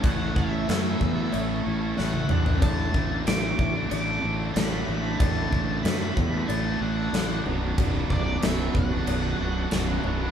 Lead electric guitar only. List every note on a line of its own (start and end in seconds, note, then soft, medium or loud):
0.05 0.35 F#5 medium
0.36 1.62 E5 medium
1.98 2.62 F#5 medium
2.63 3.23 A5 loud
3.27 3.88 D6 loud
3.90 4.51 D6 loud
4.54 5.22 B5 loud
5.18 5.80 A5 loud
5.83 6.50 B5 medium
6.48 6.82 A5 medium
6.82 7.42 F#5 medium
8.11 8.43 D5 medium
8.43 8.73 E5 loud
8.75 10.31 F#5 loud